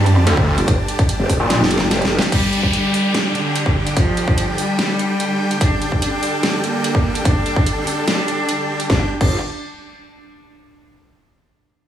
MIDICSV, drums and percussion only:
0, 0, Header, 1, 2, 480
1, 0, Start_track
1, 0, Tempo, 410959
1, 793, Time_signature, 4, 2, 24, 8
1, 13875, End_track
2, 0, Start_track
2, 0, Title_t, "Drums"
2, 72, Note_on_c, 9, 42, 53
2, 189, Note_off_c, 9, 42, 0
2, 312, Note_on_c, 9, 42, 78
2, 429, Note_off_c, 9, 42, 0
2, 435, Note_on_c, 9, 36, 101
2, 552, Note_off_c, 9, 36, 0
2, 675, Note_on_c, 9, 42, 60
2, 792, Note_off_c, 9, 42, 0
2, 792, Note_on_c, 9, 36, 118
2, 792, Note_on_c, 9, 42, 82
2, 909, Note_off_c, 9, 36, 0
2, 909, Note_off_c, 9, 42, 0
2, 1033, Note_on_c, 9, 42, 54
2, 1149, Note_off_c, 9, 42, 0
2, 1155, Note_on_c, 9, 36, 109
2, 1155, Note_on_c, 9, 42, 39
2, 1272, Note_off_c, 9, 36, 0
2, 1272, Note_off_c, 9, 42, 0
2, 1273, Note_on_c, 9, 42, 81
2, 1390, Note_off_c, 9, 42, 0
2, 1512, Note_on_c, 9, 36, 62
2, 1513, Note_on_c, 9, 46, 100
2, 1629, Note_off_c, 9, 36, 0
2, 1630, Note_off_c, 9, 46, 0
2, 1753, Note_on_c, 9, 38, 68
2, 1753, Note_on_c, 9, 42, 83
2, 1870, Note_off_c, 9, 38, 0
2, 1870, Note_off_c, 9, 42, 0
2, 1913, Note_on_c, 9, 38, 78
2, 1993, Note_on_c, 9, 42, 55
2, 2030, Note_off_c, 9, 38, 0
2, 2073, Note_on_c, 9, 38, 86
2, 2110, Note_off_c, 9, 42, 0
2, 2189, Note_off_c, 9, 38, 0
2, 2233, Note_on_c, 9, 38, 90
2, 2233, Note_on_c, 9, 42, 81
2, 2350, Note_off_c, 9, 38, 0
2, 2350, Note_off_c, 9, 42, 0
2, 2356, Note_on_c, 9, 42, 37
2, 2393, Note_on_c, 9, 38, 96
2, 2473, Note_off_c, 9, 42, 0
2, 2510, Note_off_c, 9, 38, 0
2, 2553, Note_on_c, 9, 38, 108
2, 2596, Note_on_c, 9, 42, 64
2, 2669, Note_off_c, 9, 38, 0
2, 2712, Note_off_c, 9, 42, 0
2, 2712, Note_on_c, 9, 36, 114
2, 2713, Note_on_c, 9, 42, 82
2, 2713, Note_on_c, 9, 49, 97
2, 2829, Note_off_c, 9, 36, 0
2, 2830, Note_off_c, 9, 42, 0
2, 2830, Note_off_c, 9, 49, 0
2, 2953, Note_on_c, 9, 42, 54
2, 3070, Note_off_c, 9, 42, 0
2, 3075, Note_on_c, 9, 36, 62
2, 3192, Note_off_c, 9, 36, 0
2, 3193, Note_on_c, 9, 42, 79
2, 3310, Note_off_c, 9, 42, 0
2, 3433, Note_on_c, 9, 46, 94
2, 3550, Note_off_c, 9, 46, 0
2, 3673, Note_on_c, 9, 38, 117
2, 3673, Note_on_c, 9, 42, 80
2, 3790, Note_off_c, 9, 38, 0
2, 3790, Note_off_c, 9, 42, 0
2, 3913, Note_on_c, 9, 42, 53
2, 4030, Note_off_c, 9, 42, 0
2, 4152, Note_on_c, 9, 42, 84
2, 4269, Note_off_c, 9, 42, 0
2, 4275, Note_on_c, 9, 36, 102
2, 4392, Note_off_c, 9, 36, 0
2, 4515, Note_on_c, 9, 42, 64
2, 4632, Note_off_c, 9, 42, 0
2, 4632, Note_on_c, 9, 36, 125
2, 4632, Note_on_c, 9, 42, 82
2, 4749, Note_off_c, 9, 36, 0
2, 4749, Note_off_c, 9, 42, 0
2, 4872, Note_on_c, 9, 42, 54
2, 4989, Note_off_c, 9, 42, 0
2, 4995, Note_on_c, 9, 36, 108
2, 5112, Note_off_c, 9, 36, 0
2, 5112, Note_on_c, 9, 42, 81
2, 5229, Note_off_c, 9, 42, 0
2, 5352, Note_on_c, 9, 46, 95
2, 5468, Note_off_c, 9, 46, 0
2, 5592, Note_on_c, 9, 38, 121
2, 5592, Note_on_c, 9, 42, 83
2, 5709, Note_off_c, 9, 38, 0
2, 5709, Note_off_c, 9, 42, 0
2, 5832, Note_on_c, 9, 42, 57
2, 5949, Note_off_c, 9, 42, 0
2, 6072, Note_on_c, 9, 42, 83
2, 6189, Note_off_c, 9, 42, 0
2, 6435, Note_on_c, 9, 42, 65
2, 6552, Note_off_c, 9, 42, 0
2, 6552, Note_on_c, 9, 36, 125
2, 6553, Note_on_c, 9, 42, 82
2, 6669, Note_off_c, 9, 36, 0
2, 6669, Note_off_c, 9, 42, 0
2, 6793, Note_on_c, 9, 42, 54
2, 6910, Note_off_c, 9, 42, 0
2, 6914, Note_on_c, 9, 36, 66
2, 7031, Note_off_c, 9, 36, 0
2, 7032, Note_on_c, 9, 42, 80
2, 7149, Note_off_c, 9, 42, 0
2, 7273, Note_on_c, 9, 46, 89
2, 7390, Note_off_c, 9, 46, 0
2, 7513, Note_on_c, 9, 38, 126
2, 7513, Note_on_c, 9, 42, 79
2, 7629, Note_off_c, 9, 38, 0
2, 7629, Note_off_c, 9, 42, 0
2, 7752, Note_on_c, 9, 42, 54
2, 7869, Note_off_c, 9, 42, 0
2, 7992, Note_on_c, 9, 42, 82
2, 8109, Note_off_c, 9, 42, 0
2, 8115, Note_on_c, 9, 36, 109
2, 8231, Note_off_c, 9, 36, 0
2, 8355, Note_on_c, 9, 42, 63
2, 8472, Note_off_c, 9, 42, 0
2, 8472, Note_on_c, 9, 36, 124
2, 8472, Note_on_c, 9, 42, 78
2, 8589, Note_off_c, 9, 36, 0
2, 8589, Note_off_c, 9, 42, 0
2, 8712, Note_on_c, 9, 42, 52
2, 8829, Note_off_c, 9, 42, 0
2, 8835, Note_on_c, 9, 36, 109
2, 8951, Note_off_c, 9, 36, 0
2, 8953, Note_on_c, 9, 42, 76
2, 9069, Note_off_c, 9, 42, 0
2, 9192, Note_on_c, 9, 46, 88
2, 9309, Note_off_c, 9, 46, 0
2, 9432, Note_on_c, 9, 38, 123
2, 9432, Note_on_c, 9, 42, 77
2, 9549, Note_off_c, 9, 38, 0
2, 9549, Note_off_c, 9, 42, 0
2, 9672, Note_on_c, 9, 42, 51
2, 9789, Note_off_c, 9, 42, 0
2, 9912, Note_on_c, 9, 42, 77
2, 10029, Note_off_c, 9, 42, 0
2, 10275, Note_on_c, 9, 42, 61
2, 10392, Note_off_c, 9, 42, 0
2, 10393, Note_on_c, 9, 36, 114
2, 10393, Note_on_c, 9, 38, 87
2, 10509, Note_off_c, 9, 36, 0
2, 10510, Note_off_c, 9, 38, 0
2, 10755, Note_on_c, 9, 36, 114
2, 10755, Note_on_c, 9, 49, 87
2, 10872, Note_off_c, 9, 36, 0
2, 10872, Note_off_c, 9, 49, 0
2, 13875, End_track
0, 0, End_of_file